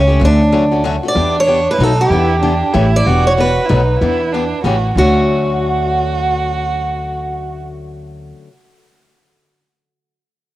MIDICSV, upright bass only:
0, 0, Header, 1, 2, 480
1, 0, Start_track
1, 0, Key_signature, 2, "major"
1, 0, Tempo, 316456
1, 325, Time_signature, 3, 2, 24, 8
1, 16002, End_track
2, 0, Start_track
2, 0, Title_t, "Upright bass"
2, 0, Program_c, 0, 32
2, 0, Note_on_c, 0, 37, 81
2, 249, Note_off_c, 0, 37, 0
2, 319, Note_on_c, 0, 38, 96
2, 1471, Note_off_c, 0, 38, 0
2, 1750, Note_on_c, 0, 40, 86
2, 2521, Note_off_c, 0, 40, 0
2, 2705, Note_on_c, 0, 35, 78
2, 3095, Note_off_c, 0, 35, 0
2, 3186, Note_on_c, 0, 40, 79
2, 3959, Note_off_c, 0, 40, 0
2, 4163, Note_on_c, 0, 33, 89
2, 4545, Note_off_c, 0, 33, 0
2, 4643, Note_on_c, 0, 28, 80
2, 5410, Note_off_c, 0, 28, 0
2, 5610, Note_on_c, 0, 35, 82
2, 5989, Note_off_c, 0, 35, 0
2, 6085, Note_on_c, 0, 40, 76
2, 6851, Note_off_c, 0, 40, 0
2, 7036, Note_on_c, 0, 33, 74
2, 7422, Note_off_c, 0, 33, 0
2, 7514, Note_on_c, 0, 38, 73
2, 12613, Note_off_c, 0, 38, 0
2, 16002, End_track
0, 0, End_of_file